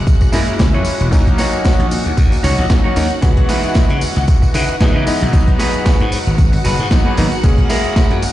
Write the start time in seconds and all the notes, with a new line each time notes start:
Already playing: G#3 A#3 C#4 F#4 G#4 F#5
0.07 kick, closed hi-hat, tambourine
0.21 muted clean electric guitar stroke, kick, tambourine
0.32 F#2 G#3 A#3 C#4 E4 G#4 A#4, open hi-hat, tambourine
0.48 muted slap bass stroke, closed hi-hat, tambourine
0.59 C#2, kick, snare, closed hi-hat, tambourine
0.73 F#2 E4 G#4 C#5
0.85 muted slap bass stroke, open hi-hat, tambourine
1.00 E1, closed hi-hat, tambourine
1.11 D#2 F#3 A#3 C#4 D#4, kick, closed hi-hat, tambourine
1.27 kick, closed hi-hat
1.38 D#4 F#4 C#5, snare, open hi-hat, tambourine
1.53 closed hi-hat, tambourine
1.64 kick, snare, closed hi-hat, tambourine
1.79 A#1, closed hi-hat
1.91 open hi-hat, tambourine
2.06 D#2, closed hi-hat, tambourine
2.17 D#2, kick, closed hi-hat, tambourine
2.31 muted clean electric guitar stroke, open hi-hat, tambourine
2.43 C#2 D#4 F#4 C#5, open hi-hat, tambourine
2.58 A#1, closed hi-hat, tambourine
2.70 F#3 A#3 C#4 D#4, kick, snare, closed hi-hat, tambourine
2.84 D#4 F#4 C#5
2.96 D#2 F#3 A#3 C#4 D#4, open hi-hat, tambourine
3.11 closed hi-hat, tambourine
3.22 C#2 E3 G#3 B3 F#4, kick, closed hi-hat, tambourine
3.37 kick, closed hi-hat
3.48 D#4 E4 B4, snare, open hi-hat, tambourine
3.63 closed hi-hat, tambourine
3.75 kick, snare, closed hi-hat, tambourine
3.90 C#3, closed hi-hat
4.01 muted slap bass stroke, open hi-hat, tambourine
4.16 C#2, closed hi-hat, tambourine
4.28 kick, closed hi-hat, tambourine
4.42 muted clean electric guitar stroke, kick, tambourine
4.54 C#3 D#4 E4 B4, open hi-hat, tambourine
4.68 muted slap bass stroke, closed hi-hat, tambourine
4.80 G#2 E3 G#3 B3 D#4, kick, snare, closed hi-hat, tambourine
4.95 C#3 D#4 E4 B4
5.06 E3 G#3 B3 D#4, muted slap bass stroke, open hi-hat, tambourine
5.21 B1, closed hi-hat, tambourine
5.32 G#1 F#3 B3 D#4 F#4 F#5, kick, closed hi-hat, tambourine
5.47 kick, closed hi-hat
5.59 F#4 G#4 B4, snare, open hi-hat, tambourine
5.74 closed hi-hat, tambourine
5.86 kick, snare, closed hi-hat, tambourine
6.00 G#2, closed hi-hat
6.12 open hi-hat, tambourine
6.26 G#1, closed hi-hat, tambourine
6.38 G#1, kick, closed hi-hat, tambourine
6.52 muted clean electric guitar stroke, open hi-hat, tambourine
6.64 F#1 F#4 G#4 B4, open hi-hat, tambourine
6.79 G#2, closed hi-hat, tambourine
6.91 F#3 A#3 B3 D#4, kick, snare, closed hi-hat, tambourine
7.05 F#4 G#4 B4
7.17 G#1 F#3 A#3 B3 D#4, open hi-hat, tambourine
7.32 closed hi-hat, tambourine
7.43 F#1 G#3 A#3 C#4 G#4, kick, closed hi-hat, tambourine
7.58 kick, closed hi-hat
7.69 E4 G#4 A#4, snare, open hi-hat, tambourine
7.84 closed hi-hat, tambourine
7.96 kick, snare, closed hi-hat, tambourine
8.11 F#2, closed hi-hat
8.22 muted slap bass stroke, open hi-hat, tambourine